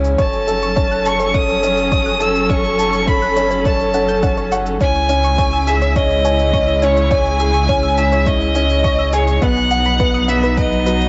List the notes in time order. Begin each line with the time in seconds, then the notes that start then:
Already playing: C#2 C#3 G#3 C#4 E4 G#4 C#5 G#5
0.05 shaker
0.18 F#1 F#3 C#4 A4 C#5 A5, kick, shaker
0.33 shaker
0.47 A4, shaker
0.62 C#6, shaker
0.76 C#4 C#5, kick, shaker
0.91 F#6, shaker
1.05 A5 C#6, shaker
1.20 C#5, shaker
1.34 C#4 C#6 D#6, kick, shaker
1.49 shaker
1.63 C#4 C#5, shaker
1.78 shaker
1.92 C#5 C#6, kick, shaker
2.06 F#6, shaker
2.20 A4 A5 E6, shaker
2.35 shaker
2.49 C#4 C#5 C#6, kick, shaker
2.64 shaker
2.79 A5, shaker
2.93 C#6, shaker
3.07 C#4 C#5 B5, kick, shaker
3.22 F#6, shaker
3.36 C#4, shaker
3.51 C#5, shaker
3.65 C#5 A5 C#6, kick, shaker
3.80 shaker
3.94 C#4 F#5, shaker
4.08 G6, shaker
4.23 C#4 F#5, kick, shaker
4.37 C#5, shaker
4.52 F#5 C#6, shaker
4.66 shaker
4.80 C#2 C#3 G#3 C#4 E4 C#5 G#5, kick, shaker
4.95 shaker
5.09 C#4, shaker
5.24 C#6, shaker
5.38 C#5, kick, shaker
5.52 E6, shaker
5.67 G#4 E5, shaker
5.81 C#5, shaker
5.96 C#4 D#5 C#6, kick, shaker
6.10 shaker
6.25 C#5 G#5, shaker
6.39 shaker
6.53 C#4 C#6, kick, shaker
6.68 E6, shaker
6.82 C#4 C#5 G#5, shaker
6.97 shaker
7.11 C#5 G#5, kick, shaker
7.25 shaker
7.39 G#4, shaker
7.54 C#6, shaker
7.69 C#4 C#5, kick, shaker
7.83 E6, shaker
7.97 E5 G#5, shaker
8.12 C#5, shaker
8.26 C#4 D#5 C#6, kick, shaker
8.41 shaker
8.55 C#4 C#5, shaker
8.70 shaker
8.84 C#5 C#6, kick, shaker
8.99 E6, shaker
9.13 G#4 C#5 G#5, shaker
9.28 shaker
9.41 B1 F#3 B3 D#4 B4 F#5, kick, shaker
9.56 shaker
9.71 F#5, shaker
9.85 B5, shaker
10.00 B3 B4, kick, shaker
10.14 D#6, shaker
10.28 B3 E5, shaker
10.43 B4, shaker
10.57 B4 D#5 B5, kick, shaker
10.72 shaker
10.86 F#4 B4, shaker
11.01 shaker